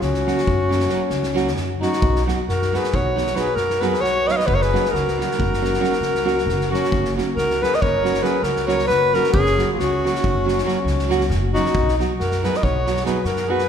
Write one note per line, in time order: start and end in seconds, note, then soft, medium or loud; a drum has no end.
0.01 0.29 C#2 medium
0.01 1.52 C#4 medium
0.01 1.52 F#4 medium
0.01 snare soft
0.14 snare soft
0.26 0.39 F#3 medium
0.26 0.39 A#3 medium
0.26 0.39 C#4 soft
0.26 0.39 F#4 medium
0.26 snare soft
0.38 snare soft
0.47 0.85 F#2 loud
0.47 kick medium
0.69 0.81 F#3 medium
0.69 0.82 A#3 medium
0.69 0.82 C#4 medium
0.69 0.82 F#4 medium
0.69 snare soft
0.80 snare soft
0.89 1.01 F#3 medium
0.89 1.01 A#3 medium
0.89 1.02 C#4 medium
0.89 1.02 F#4 medium
0.89 snare soft
1.10 1.57 C#2 medium
1.10 snare soft
1.23 snare soft
1.34 1.47 F#3 medium
1.34 1.47 A#3 medium
1.34 1.47 C#4 medium
1.34 1.48 F#4 medium
1.34 snare soft
1.48 snare soft
1.56 1.84 F#2 medium
1.56 snare soft
1.80 1.93 F#3 medium
1.80 1.93 A#3 soft
1.80 1.94 C#4 soft
1.80 2.23 D#4 medium
1.80 2.24 F#4 loud
1.80 1.94 F#4 medium
1.80 snare soft
1.93 snare soft
2.02 2.30 B1 medium
2.02 kick loud
2.16 snare soft
2.25 2.39 F#3 soft
2.25 2.39 B3 medium
2.25 2.39 D#4 soft
2.25 2.40 F#4 medium
2.25 snare soft
2.48 2.75 F#2 medium
2.48 2.72 F#4 medium
2.48 2.77 A#4 medium
2.48 snare soft
2.62 snare soft
2.72 2.85 F#3 medium
2.72 2.85 B3 medium
2.72 2.85 D#4 medium
2.72 2.86 F#4 medium
2.72 2.97 B4 medium
2.72 snare soft
2.76 2.95 G#4 medium
2.84 snare soft
2.93 3.31 B1 loud
2.93 3.36 F#4 medium
2.93 3.38 C#5 medium
2.93 kick medium
3.15 3.28 F#3 soft
3.15 3.28 B3 medium
3.15 3.28 D#4 medium
3.15 3.29 F#4 medium
3.15 snare soft
3.27 snare soft
3.35 3.47 F#3 medium
3.35 3.47 B3 medium
3.35 3.48 D#4 medium
3.35 3.48 F#4 medium
3.35 3.57 B4 medium
3.35 snare soft
3.39 3.57 G#4 medium
3.55 4.02 F#2 medium
3.55 3.82 F#4 medium
3.55 3.82 A#4 loud
3.55 snare soft
3.70 snare soft
3.80 3.93 F#3 medium
3.80 3.93 B3 medium
3.80 3.94 D#4 medium
3.80 3.94 F#4 medium
3.80 4.02 G#4 medium
3.80 4.02 B4 medium
3.80 snare soft
3.94 snare soft
4.01 4.29 B1 loud
4.01 4.27 F#4 medium
4.01 4.29 C#5 loud
4.01 snare soft
4.26 4.39 F#3 medium
4.26 4.39 B3 medium
4.26 4.39 D#4 soft
4.26 4.40 F#4 medium
4.26 4.32 B4 medium
4.26 4.33 D#5 medium
4.26 snare soft
4.31 4.37 C#5 medium
4.31 4.38 F5 medium
4.36 4.48 B4 medium
4.36 4.48 D#5 medium
4.36 snare soft
4.47 4.75 F#1 loud
4.47 4.55 F#4 medium
4.47 4.56 B4 loud
4.47 kick medium
4.55 4.63 A#4 medium
4.55 4.64 C#5 medium
4.62 4.93 G#4 medium
4.62 4.92 B4 medium
4.62 snare soft
4.72 4.84 F#3 medium
4.72 4.85 A#3 soft
4.72 4.85 C#4 medium
4.72 4.85 F#4 medium
4.72 snare soft
4.85 snare soft
4.91 5.20 C#2 medium
4.91 6.71 F#4 medium
4.91 6.70 A#4 medium
4.95 snare soft
5.08 snare soft
5.17 5.30 F#3 medium
5.17 5.30 A#3 medium
5.17 5.31 C#4 soft
5.17 5.31 F#4 medium
5.17 snare soft
5.31 snare soft
5.39 5.76 F#1 medium
5.39 kick medium
5.53 snare soft
5.61 5.73 F#3 medium
5.61 5.73 A#3 soft
5.61 5.73 C#4 medium
5.61 5.74 F#4 medium
5.61 snare soft
5.74 snare soft
5.79 5.92 F#3 medium
5.79 5.92 A#3 medium
5.79 5.93 C#4 medium
5.79 5.93 F#4 medium
5.84 snare soft
5.93 snare soft
6.00 6.48 C#2 medium
6.00 snare soft
6.15 snare soft
6.24 6.37 F#3 medium
6.24 6.37 A#3 medium
6.24 6.38 C#4 medium
6.24 6.38 F#4 medium
6.24 snare soft
6.38 snare soft
6.46 6.73 F#1 loud
6.46 snare soft
6.61 snare soft
6.69 6.82 F#3 medium
6.69 6.83 A#3 medium
6.69 6.83 C#4 medium
6.69 7.13 F#4 loud
6.69 6.83 F#4 medium
6.73 7.14 C#4 medium
6.73 snare soft
6.84 snare soft
6.91 7.19 F#1 loud
6.91 kick medium
7.05 snare soft
7.16 7.28 F#3 medium
7.16 7.29 A#3 medium
7.16 7.29 C#4 medium
7.16 7.29 F#4 medium
7.16 snare soft
7.36 7.64 C#2 medium
7.36 7.61 F#4 medium
7.36 7.64 A#4 loud
7.36 snare soft
7.50 snare soft
7.61 7.73 F#3 soft
7.61 7.74 A#3 medium
7.61 7.74 C#4 soft
7.61 7.74 F#4 medium
7.61 7.77 G#4 medium
7.61 7.77 B4 loud
7.61 snare soft
7.73 7.83 B4 medium
7.73 7.83 D#5 medium
7.73 snare soft
7.82 8.19 F#1 medium
7.82 8.25 A#4 medium
7.82 8.24 C#5 medium
7.82 kick medium
8.02 8.15 F#3 soft
8.02 8.16 A#3 soft
8.02 8.16 C#4 soft
8.02 8.17 F#4 medium
8.02 snare soft
8.14 snare soft
8.22 8.35 F#3 medium
8.22 8.35 A#3 medium
8.22 8.35 C#4 medium
8.22 8.36 F#4 medium
8.22 8.43 G#4 medium
8.22 8.45 B4 medium
8.22 snare soft
8.43 8.90 C#2 medium
8.43 8.69 F#4 medium
8.43 8.67 A#4 loud
8.43 snare soft
8.56 snare soft
8.67 8.80 F#3 medium
8.67 8.80 A#3 medium
8.67 8.80 C#4 medium
8.67 8.81 F#4 medium
8.67 8.88 A#4 medium
8.67 8.87 C#5 medium
8.67 snare soft
8.79 snare soft
8.87 9.15 F#1 medium
8.87 9.12 F#4 medium
8.87 9.16 B4 loud
8.87 snare soft
9.13 9.25 F#3 medium
9.13 9.25 A#3 soft
9.13 9.26 C#4 soft
9.13 9.26 F#4 medium
9.13 9.35 F#4 medium
9.13 9.32 A#4 loud
9.13 snare soft
9.24 snare soft
9.33 9.61 F#1 loud
9.33 9.70 C#4 medium
9.33 9.73 G#4 loud
9.33 kick loud
9.46 snare soft
9.57 9.70 F#3 soft
9.57 9.71 A#3 medium
9.57 9.71 C#4 medium
9.57 9.71 F#4 medium
9.57 snare soft
9.73 9.79 F4 medium
9.73 9.80 G#4 medium
9.79 10.06 C#2 medium
9.79 11.26 C#4 medium
9.79 11.26 F#4 medium
9.79 snare soft
10.04 10.16 F#3 medium
10.04 10.16 A#3 medium
10.04 10.16 C#4 medium
10.04 10.16 F#4 medium
10.04 snare soft
10.15 snare soft
10.24 10.60 F#1 loud
10.24 kick medium
10.45 10.57 F#3 medium
10.45 10.57 A#3 medium
10.45 10.58 C#4 medium
10.45 10.58 F#4 medium
10.45 snare soft
10.58 snare soft
10.65 10.77 F#3 medium
10.65 10.77 A#3 medium
10.65 10.77 C#4 medium
10.65 10.78 F#4 medium
10.65 snare soft
10.85 11.31 C#2 medium
10.85 snare soft
10.99 snare soft
11.09 11.21 F#3 medium
11.09 11.22 A#3 medium
11.09 11.22 C#4 medium
11.09 11.22 F#4 loud
11.09 snare soft
11.21 snare soft
11.30 11.56 F#1 loud
11.30 snare soft
11.53 11.66 F#3 medium
11.53 11.67 A#3 medium
11.53 11.67 C#4 soft
11.53 11.95 D#4 loud
11.53 11.95 F#4 medium
11.53 11.67 F#4 medium
11.53 snare soft
11.65 snare soft
11.74 12.01 B1 loud
11.74 kick medium
11.88 snare soft
11.99 12.11 F#3 medium
11.99 12.11 B3 medium
11.99 12.11 D#4 medium
11.99 12.12 F#4 medium
11.99 snare soft
12.18 12.46 F#2 medium
12.18 12.42 F#4 medium
12.18 12.46 A#4 medium
12.18 snare soft
12.31 snare soft
12.42 12.55 F#3 medium
12.42 12.55 B3 medium
12.42 12.56 D#4 medium
12.42 12.56 F#4 medium
12.42 12.57 G#4 medium
12.42 12.58 B4 loud
12.42 snare soft
12.54 12.63 B4 medium
12.54 12.65 D#5 medium
12.54 snare soft
12.61 12.99 B1 loud
12.61 13.04 F#4 medium
12.61 13.05 C#5 medium
12.61 kick medium
12.85 12.97 F#3 soft
12.85 12.97 B3 medium
12.85 12.98 D#4 soft
12.85 12.98 F#4 medium
12.85 snare soft
12.96 snare soft
13.04 13.16 F#3 medium
13.04 13.17 B3 medium
13.04 13.17 D#4 medium
13.04 13.17 F#4 medium
13.04 13.22 G#4 medium
13.04 13.23 B4 medium
13.04 snare soft
13.23 13.69 F#2 medium
13.23 13.46 F#4 medium
13.23 13.52 A#4 medium
13.23 snare soft
13.36 snare soft
13.46 13.60 F#3 medium
13.46 13.60 B3 medium
13.46 13.61 D#4 medium
13.46 13.61 F#4 medium
13.46 13.67 G#4 medium
13.50 13.69 B4 loud
13.59 snare soft